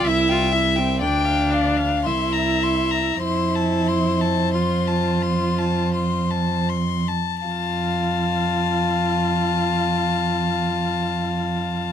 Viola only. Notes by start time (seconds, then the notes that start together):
0.07 E4
0.31 F4
0.54 E4
0.79 C4
1.02 D4
2.06 E4
3.23 E4
4.54 F4
7.47 F4